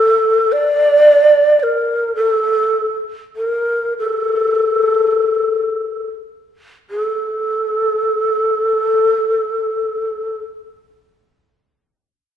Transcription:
0.00 0.54 A4 medium
0.52 1.59 D5 medium
1.59 2.15 A#4 medium
1.59 1.64 D5 medium
2.15 2.27 A#4 medium
2.27 2.96 A4 medium
3.36 3.93 A#4 medium
3.99 6.07 A4 medium
6.90 7.01 G#4 medium
7.01 10.39 A4 medium

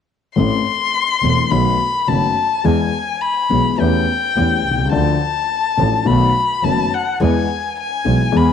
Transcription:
0.36 0.61 A1 medium
0.36 0.62 A1 soft
0.36 0.61 A2 soft
0.36 0.61 E3 soft
0.36 0.61 A3 soft
0.36 0.61 C4 soft
0.36 0.62 A4 soft
0.36 1.52 C6 medium
1.23 1.47 E1 soft
1.23 1.48 E2 soft
1.23 1.47 E3 soft
1.23 1.47 A3 soft
1.23 1.48 C4 soft
1.23 1.48 A4 soft
1.51 1.76 B1 soft
1.51 1.76 B1 medium
1.51 1.76 B2 soft
1.51 1.76 D#3 soft
1.51 1.76 A3 soft
1.51 1.76 B3 soft
1.51 1.76 F#4 soft
1.51 2.10 B5 medium
2.07 2.33 F#1 soft
2.07 2.32 F#2 soft
2.07 2.32 D#3 soft
2.07 2.33 A3 soft
2.07 2.33 B3 soft
2.07 2.33 F#4 soft
2.07 2.67 A5 medium
2.64 2.89 E2 medium
2.64 2.90 E2 medium
2.64 2.89 E3 medium
2.64 2.89 G#3 soft
2.64 2.89 B3 soft
2.64 2.89 G#4 soft
2.64 3.23 G#5 medium
3.21 3.81 B5 medium
3.50 3.75 B1 soft
3.50 3.75 B2 soft
3.50 3.75 E3 soft
3.50 3.75 G#3 soft
3.50 3.74 B3 soft
3.50 3.75 G#4 soft
3.78 4.03 E2 medium
3.78 4.04 E2 medium
3.78 4.03 E3 medium
3.78 4.03 A3 soft
3.78 4.03 C#4 soft
3.78 4.03 G4 soft
3.78 4.93 G5 medium
4.36 4.60 E2 soft
4.36 4.60 E3 soft
4.36 4.60 A3 soft
4.36 4.60 C#4 soft
4.36 4.61 G4 soft
4.65 4.93 C2 soft
4.71 4.78 B1 soft
4.78 4.86 C2 soft
4.86 4.93 C#2 soft
4.92 5.17 D2 medium
4.92 5.17 D2 soft
4.92 5.16 D3 medium
4.92 5.16 F3 soft
4.92 5.17 A3 soft
4.92 5.17 D4 soft
4.92 5.17 A4 soft
4.92 6.08 A5 medium
5.77 6.02 A1 soft
5.77 6.03 A1 soft
5.77 6.02 A2 soft
5.77 6.02 F3 soft
5.77 6.02 A3 soft
5.77 6.02 D4 soft
5.77 6.02 A4 soft
6.05 6.30 B1 medium
6.05 6.31 B1 medium
6.05 6.30 B2 medium
6.05 6.30 D#3 soft
6.05 6.30 A3 soft
6.05 6.30 B3 soft
6.05 6.30 F#4 medium
6.05 6.65 B5 medium
6.63 6.88 F#1 soft
6.63 6.87 F#2 soft
6.63 6.87 D#3 soft
6.63 6.87 A3 soft
6.63 6.87 B3 soft
6.63 6.88 F#4 soft
6.63 6.95 A5 medium
6.93 7.21 F#5 soft
7.20 7.45 E2 medium
7.20 7.45 E3 medium
7.20 7.45 G#3 soft
7.20 7.45 B3 soft
7.20 7.45 G#4 medium
7.20 7.75 G#5 medium
7.80 8.38 G#5 medium
8.04 8.30 B1 soft
8.04 8.30 B2 soft
8.04 8.29 E3 soft
8.04 8.30 G#3 soft
8.04 8.30 B3 soft
8.04 8.30 G#4 soft
8.32 8.53 E2 medium
8.32 8.53 E3 medium
8.32 8.53 G#3 soft
8.32 8.53 B3 soft
8.32 8.53 G#4 medium
8.37 8.53 B5 medium

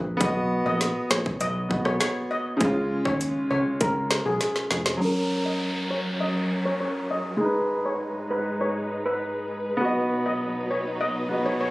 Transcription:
0.00 0.18 A#1 medium
0.00 0.15 G#3 medium
0.00 0.17 D#4 medium
0.00 0.19 B4 loud
0.17 0.61 B1 loud
0.17 1.66 B3 medium
0.17 1.68 F#4 medium
0.17 kick loud
0.17 closed hi-hat medium
0.25 1.70 D#5 medium
0.66 0.93 A#1 medium
0.66 0.76 D#5 medium
0.81 snare medium
0.81 closed hi-hat medium
1.11 1.24 A#1 medium
1.11 1.21 C#5 medium
1.11 cross-stick medium
1.11 snare loud
1.26 kick loud
1.41 1.81 B1 medium
1.41 1.51 D#5 medium
1.41 closed hi-hat medium
1.69 2.60 B3 medium
1.69 2.61 F#4 soft
1.69 2.62 D#5 medium
1.69 kick loud
1.85 1.99 B1 medium
1.85 1.96 C#5 medium
1.85 cross-stick loud
2.01 2.11 C#5 medium
2.01 cross-stick loud
2.01 snare loud
2.01 closed hi-hat medium
2.31 2.41 D#5 medium
2.57 3.01 C#2 loud
2.57 4.95 C#3 medium
2.57 4.97 G#3 medium
2.57 kick loud
2.57 closed hi-hat medium
2.64 4.99 F4 medium
3.05 3.32 D#2 medium
3.05 3.16 C#5 medium
3.05 kick medium
3.21 closed hi-hat medium
3.51 3.64 C#2 medium
3.51 3.61 C#5 medium
3.81 4.21 C#2 loud
3.81 3.91 A#4 medium
3.81 kick loud
3.81 closed hi-hat medium
4.11 cross-stick medium
4.11 snare loud
4.26 4.39 B1 medium
4.26 4.36 G#4 medium
4.41 snare medium
4.41 closed hi-hat medium
4.56 snare medium
4.71 4.98 F1 medium
4.71 snare medium
4.86 snare loud
4.97 7.38 F#2 medium
4.97 7.35 F#3 medium
4.97 7.38 F#3 medium
4.97 7.37 C#4 medium
4.97 7.38 C#4 medium
4.97 7.38 A#4 medium
4.97 downlifter medium
5.05 7.39 A#4 medium
5.46 5.56 D#5 medium
5.91 6.01 C#5 medium
6.21 6.31 D#5 medium
6.66 6.76 C#5 medium
6.80 6.91 C#5 medium
7.11 7.21 D#5 medium
7.37 9.78 G#2 medium
7.37 9.75 G#3 medium
7.37 9.78 G#3 medium
7.37 9.78 D#4 medium
7.37 9.77 D#4 medium
7.37 11.71 B4 medium
7.44 9.79 B4 medium
7.86 7.96 C#5 medium
8.31 8.41 B4 medium
8.61 8.71 C#5 medium
9.06 9.16 B4 medium
9.77 11.71 B2 medium
9.77 11.71 F#3 medium
9.77 11.26 B3 medium
9.77 11.71 D#4 medium
9.77 11.28 F#4 medium
9.77 riser medium
9.85 11.30 D#5 medium
10.26 10.36 D#5 medium
10.71 10.81 C#5 medium
11.01 11.11 D#5 medium
11.29 11.71 B3 soft
11.29 11.71 F#4 soft
11.29 11.71 D#5 medium
11.46 11.56 C#5 medium
11.61 11.71 C#5 medium

